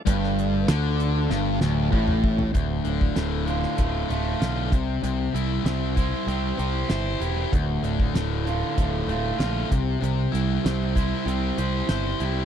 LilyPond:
<<
  \new Staff \with { instrumentName = "Tonewheel organ" } { \time 4/4 \key d \minor \tempo 4 = 96 <a d' f'>1 | r1 | r1 | r1 |
r1 | }
  \new Staff \with { instrumentName = "Overdriven electric guitar" } { \clef bass \time 4/4 \key d \minor g,4 d4 g,8 d,8 a,4 | d,8 a,8 d8 f'8 a8 f'8 d8 c8 | c8 g8 e'8 c''8 g'8 c''8 e'8 g'8 | d,8 a,8 d8 f'8 a8 f'8 d8 c8 |
c8 g8 e'8 c''8 g'8 c''8 e'8 g'8 | }
  \new Staff \with { instrumentName = "Distorted electric guitar" } { \clef bass \time 4/4 \key d \minor g,4 d4 g,8 d,8 a,4 | d,8 d8 a,8 d8 a,8 a8 f'8 c8 | c8 e'8 c'8 e'8 c'8 g'8 c''8 e'8 | d,8 d8 a,8 d8 a,8 a8 f'8 c8 |
c8 e'8 c'8 e'8 c'8 g'8 c''8 e'8 | }
  \new Staff \with { instrumentName = "Picked electric bass" } { \clef bass \time 4/4 \key d \minor g,,4 d,4 g,,8 d,,8 a,,4 | d,,8 d,,8 d,,4 d,,8 d,,8 b,,8 c,8 | c,8 c,8 c,4 c,8 c,8 g,,8 e,,8 | d,,8 d,,8 d,,4 d,,8 d,,8 bes,,8 c,8 |
c,8 c,8 c,4 c,8 c,8 g,,8 c,8 | }
  \new DrumStaff \with { instrumentName = "Drums" } \drummode { \time 4/4 <hh bd>16 sn16 hh8 <hh sn>8 hh8 sn8 sn8 bd16 toml16 bd16 tomfh16 | <hh bd>8 hh16 bd16 <hh sn>8 hh16 sn16 <hh bd>8 hh8 <hh sn>8 <hh bd>8 | hh8 hh8 <hh sn>8 <hh bd>8 hh8 hh8 <hh sn>8 hh8 | <hh bd>8 hh16 bd16 <hh sn>8 hh8 <hh bd>8 hh8 <hh sn>8 <hh bd>8 |
hh8 hh8 <hh sn>8 <hh bd>8 hh8 hh8 <hh sn>8 hh8 | }
>>